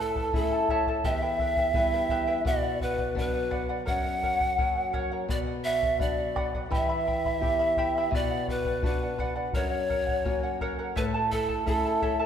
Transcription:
Already playing: A2
0.00 E4 A4 E5 A5
0.16 E4 A4 A5, bombo low
0.33 A3 C#4 E4 A4 E5 A5, bombo low
0.52 E4 A4 A5
0.69 E4 A4 C#5 E5 A5, bombo low
0.87 E4 A4 C#5 E5 A5, bombo low
1.04 E2 E4 G4 B4 D#5 E5 G5, bombo low
1.16 E5
1.22 E4 B4 G5
1.39 E4 B4 E5 G5, bombo low
1.57 E4 B4 G5, bombo low
1.74 G3 B3 E4 B4 E5 G5, bombo low
1.93 E4 B4 G5
2.09 E4 G4 B4 E5 G5, bombo low
2.27 E4 G4 B4 E5 G5
2.45 B2 B4 D5 F#5, bombo low
2.63 D5 F#5
2.81 B4 D5 F#5, bombo low
2.98 D5 F#5, bombo low
3.15 F#3 B3 D4 B4 D5 F#5, bombo low
3.34 D5 F#5
3.51 B4 D5 F#5, bombo low
3.69 B4 D5 F#5
3.86 F#2 A#4 C#5 F#5, bombo low
4.05 C#5 F#5
4.23 A#4 C#5 F#5, bombo low
4.41 C#5 F#5, bombo low
4.58 F#3 A#3 C#4 A#4 C#5 F#5, bombo low
4.76 C#5 F#5
4.93 A#4 C#5 F#5, bombo low
5.12 A#4 C#5 F#5
5.29 B2 B4 D5 F#5, bombo low
5.47 D5 F#5
5.64 B4 D5 E5 F#5
5.82 D5 F#5, bombo low
5.99 F#3 B3 D4 B4 D5 F#5, bombo low
6.18 D5 F#5
6.36 B4 D5 F#5, bombo rim, bombo low
6.54 B4 D5 F#5, bombo low
6.70 E3 E4 G4 E5 G5 B5, bombo low
6.75 E5
6.89 E4 E5 B5
7.07 E4 E5 G5 B5, bombo low
7.25 E4 E5 B5, bombo low
7.40 B3 E4 G4 E5 G5 B5, bombo low
7.59 E4 E5 B5
7.77 E4 G4 E5 G5 B5, bombo low
7.97 E4 G4 E5 G5 B5
8.11 B2 B4 D5, bombo low
8.15 D5 F#5
8.31 D5 F#5
8.48 B4 D5 F#5, bombo low
8.65 D5 F#5, bombo low
8.83 B3 D4 F#4 B4 D5, bombo low
8.87 F#5
9.02 D5 F#5
9.19 B4 D5 F#5, bombo low
9.36 B4 D5 F#5
9.53 F#2 A#4 C#5 F#5, bombo low
9.70 C#5 F#5
9.90 A#4 C#5 F#5, bombo low
10.07 C#5 F#5, bombo low
10.25 A#3 C#4 F#4 A#4 C#5 F#5, bombo low
10.43 C#5 F#5
10.61 A#4 C#5 F#5, bombo low
10.79 A#4 C#5 F#5
10.96 A2 E4 A4 B4 C#5 E5 A5, bombo low
11.14 E4 A4 A5
11.31 E4 A4 E5 A5, bombo low
11.48 E4 A4 A5, bombo low
11.66 A3 C#4 E4 A4 E5 A5, bombo low
11.85 E4 A4 A5
12.02 E4 A4 C#5 E5 A5, bombo low
12.19 E4 A4 C#5 E5 A5

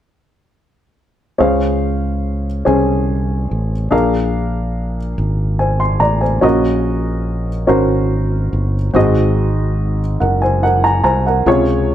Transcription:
1.38 C#2 C#3 C#4 G#4 C5 F5
2.65 C2 C#4 G#4 C5 G#5
3.51 A1
3.91 A#1 A#2 D4 G#4 A#4 F5
5.18 G#1
5.59 C5 G#5
5.80 C6
6.00 A1 D5 A#5
6.21 C5 G#5
6.41 A#1 A#2 C#4 F#4 A#4 D#5
7.67 G#1 C#4 F#4 A#4 C5
8.53 G1
8.94 G#1 G#2 C4 F#4 G#4 D#5
10.20 F#1 A#4 F#5
10.42 C5 G#5
10.63 A#4 F#5
10.84 G#5 A#5
11.04 C2 C5 G#5 A#5
11.27 A#4 F#5
11.46 C#2 C3 C#3 F4 G#4 C#5

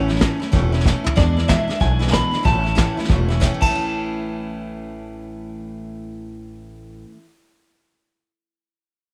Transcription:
Already playing: A1 C#4
0.08 A3 C#4 E4, snare
0.16 E3, snare
0.21 A3 C#4 E4, kick, snare, hi-hat pedal
0.40 A3 C#4 E4, muted upright bass stroke, snare
0.52 E1 A2 E3 A3 C#4 E4, kick, snare
0.72 A3 C#4 E4, snare
0.80 snare
0.84 E3 A3 C#4 E4, kick, snare, hi-hat pedal
1.04 A3 C#4 E4, muted upright bass stroke, floor tom
1.16 E2 B2 E3 G#3 D4 E4 D5, kick, snare
1.37 E3 G#3 D4 E4, snare
1.48 E2 B2 E3 G#3 D4 E4 E5, kick, snare, hi-hat pedal
1.68 E3 G#3 D4 E4, muted upright bass stroke, snare
1.80 B1 E3 G#3 D4 E4 G#5, kick, snare
1.99 E3 G#3 D4 E4, snare
2.07 E2, snare
2.12 B2 E3 G#3 D4 E4 B5, kick, snare, hi-hat pedal
2.31 E3 G#3 D4 E4, muted upright bass stroke, snare
2.43 A1 A2 E3 A3 C#4 E4 A5, kick, snare
2.64 A3 C#4 E4, snare
2.75 A2 E3 A3 C#4 E4, kick, snare, hi-hat pedal
2.97 A3 C#4 E4, muted upright bass stroke, snare
3.04 snare
3.08 E1 E3 A3 C#4 E4, kick, snare
3.28 A3 C#4 E4, snare
3.40 A2 E3 A3 C#4 E4, kick, snare, hi-hat pedal
3.54 A2
3.61 A1 E3 A5, kick, crash
3.66 A3
3.71 C#4
3.75 E4

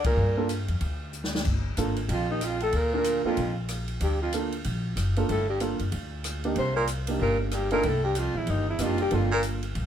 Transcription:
Already playing: D2
0.04 A#2 A#4, kick, ride
0.16 G2
0.37 A#3 D4 F4 A4
0.49 hi-hat pedal, ride
0.68 F2, ride
0.81 D2, kick, ride
1.13 hi-hat pedal
1.24 snare
1.35 snare
1.45 G1, kick, crash
1.77 G#1 A#3 D4 F4 A4, hi-hat pedal, ride
1.96 ride
2.09 A#1 F2 F4, kick, ride
2.29 D#2 D#4
2.41 F2 F4, cross-stick, hi-hat pedal, ride
2.60 A2 A4, ride
2.72 D2 A#2 A#4, kick, ride
2.93 A#3 D4 F4 A#4
3.04 hi-hat pedal, ride
3.24 F2 A#3 D4 F4 A4, muted upright bass stroke
3.37 A#1, kick, ride
3.68 cross-stick, hi-hat pedal, ride
3.88 ride
4.00 D2 G2 G4, kick, ride
4.21 F2 F4
4.33 A#3 D4 F4 A4, hi-hat pedal, ride
4.52 ride
4.64 A#1, kick, ride
4.96 F#1, cross-stick, hi-hat pedal, ride
5.16 A#3 D4 F4 A4, ride
5.29 G1 A2 A4, kick, ride
5.49 G2 G4
5.60 A#3 D4 F4 A4, hi-hat pedal, ride
5.79 F#1, ride
5.92 D2, kick, ride
6.24 cross-stick, hi-hat pedal, ride
6.44 A#3 D4 D#4 G4, ride
6.56 C2 C3 C5, kick, ride
6.76 A#2 A#4
6.87 hi-hat pedal, ride
7.07 A#3 D4 D#4 G4, ride
7.20 G1 A#2 A#4, kick
7.40 D2 D4
7.51 G2 G4, cross-stick, hi-hat pedal, ride
7.71 A#2 A#3 D4 D#4 A4 A#4, ride
7.83 C2 A2, kick, ride
7.87 A4
8.04 G2 G4
8.15 F2 F4, hi-hat pedal, ride
8.34 A#1 E2 E4
8.47 G1 D#2 D#4, kick, ride
8.68 E2 E4
8.79 F#1 F2 A#3 D4 D#4 G4, cross-stick, hi-hat pedal, ride
8.83 F4
8.98 G2 G4, ride
9.11 G1 F2 A#3 D4 F4 A4, kick, ride
9.31 A#2 A#4
9.43 hi-hat pedal, ride
9.63 ride
9.75 A#1, kick, ride

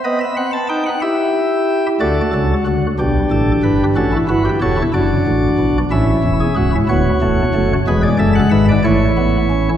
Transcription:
0.04 B3 B4 D#5
0.21 E5
0.37 C4 F#5
0.53 A5
0.69 D#4 G5
0.86 F#5
1.02 E4 G4 E5
2.00 D2 D3 F#4 A4 D5
2.33 C#2 C#3 A4
2.66 D2 D3 F#4
2.99 B1 B2 D4 G4
3.31 A1 A2 A4
3.63 G1 G2 B4
3.96 A1 A2 C#4 F#4 A4
4.12 E4
4.29 G1 G2 E4 F#4 B4
4.45 G4
4.61 E1 E2 F#4 A4 C#5
4.77 E4
4.94 F#1 F#2 D4 F#4 D5
5.27 A1 A2
5.59 B1 B2
5.91 A1 A2 C#4 E4 E5
6.24 E1 E2
6.40 G#4
6.56 C#1 C#2 F#4
6.73 E4
6.89 D1 D2 B3 F#4 C#5
7.22 E1 E2 A3
7.54 F#1 F#2 A3
7.87 E1 E2 G#3 G#4 B4
8.03 D5
8.19 F#1 F#2 A4 E5
8.35 F#5
8.51 G#1 G#2 B4 E5
8.69 D5
8.84 A1 A2 A3 E4 C#5
9.17 B3
9.50 C#4

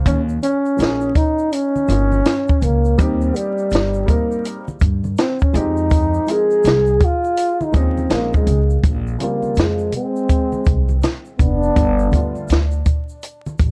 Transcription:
0.06 D#2 C#4, kick, closed hi-hat, shaker
0.29 shaker
0.42 C#4, closed hi-hat, shaker
0.66 shaker
0.77 A#1 F3 A#3 C#4 D#4 G#4, closed hi-hat, shaker
0.83 snare
1.01 shaker
1.15 D#4, kick, closed hi-hat, low conga, shaker
1.38 shaker
1.52 C#4, closed hi-hat, shaker
1.76 high conga, shaker
1.87 G1 F3 A#3 C#4 D#4 F4, closed hi-hat, shaker
2.12 high conga, shaker
2.25 snare, closed hi-hat, shaker
2.48 kick, shaker
2.61 C#2 A#3, closed hi-hat, low conga, shaker
2.85 shaker
2.98 D#2 G3 A#3 C4 D#4 G4, kick, closed hi-hat, shaker
3.21 shaker
3.35 G3, closed hi-hat, shaker
3.58 shaker
3.71 G1, closed hi-hat, shaker
3.75 snare
3.94 shaker
4.06 G3 A#3 C4 D#4, kick, closed hi-hat, low conga, shaker
4.10 A#4
4.31 shaker
4.45 closed hi-hat, shaker
4.68 high conga, shaker
4.80 G2, kick, closed hi-hat, shaker
5.04 high conga, shaker
5.17 C4, snare, closed hi-hat, shaker
5.39 C#4, kick, shaker
5.53 F2 F3 G#3 C4 D#4, closed hi-hat, low conga, shaker
5.57 D#4 G4
5.77 shaker
5.90 kick, closed hi-hat, shaker
6.14 shaker
6.27 F3 G#3 C4 D#4 A#4, closed hi-hat, shaker
6.31 G#4
6.51 shaker
6.63 C2, closed hi-hat, shaker
6.67 snare
6.86 shaker
7.00 kick, closed hi-hat, low conga, shaker
7.04 F4
7.24 shaker
7.37 closed hi-hat, shaker
7.61 D#4, high conga, shaker
7.72 D#2 F3 G#3 C4 C#4 D#4, kick, closed hi-hat, shaker
7.78 C4
7.98 high conga, shaker
8.09 A#1 F3 G#3 C4 C#4 D#4, snare, closed hi-hat, shaker
8.14 A#3
8.33 G#3, kick, shaker
8.47 C#2, closed hi-hat, low conga, shaker
8.70 shaker
8.83 A#1, kick, closed hi-hat, shaker
9.07 shaker
9.18 C#3 F3 G3 A#3 C4 F4, closed hi-hat, high conga, shaker
9.43 high conga, shaker
9.55 F2 F3, closed hi-hat, shaker
9.60 G#3, snare
9.78 shaker
9.92 G#3, closed hi-hat, low conga, shaker
9.96 C4
10.16 shaker
10.29 kick, closed hi-hat, shaker
10.52 high conga, shaker
10.65 C2, kick, closed hi-hat, shaker
10.89 high conga, shaker
11.02 snare, closed hi-hat, low conga, shaker
11.25 shaker
11.39 F1 B3 D4, kick, closed hi-hat, low conga, shaker
11.63 shaker
11.76 G1, kick, closed hi-hat, shaker
11.99 shaker
12.11 D3 G3 A3 B3, kick, closed hi-hat, high conga, shaker
12.15 F4
12.35 high conga, shaker
12.48 D2, closed hi-hat, shaker
12.52 snare
12.71 shaker
12.86 kick, closed hi-hat, low conga, shaker
13.09 shaker
13.23 closed hi-hat, shaker
13.46 high conga, shaker
13.58 A1, kick, closed hi-hat, shaker

